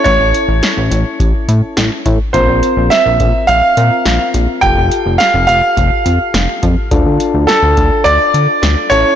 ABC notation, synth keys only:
X:1
M:4/4
L:1/8
Q:1/4=105
K:Dm
V:1 name="Synth keys"
[^CEA]6- [CEA] z | [CFB]4- [CFB] [CFB]3 | [FGA]8 | [DFA]6- [DFA] [^CEA] |]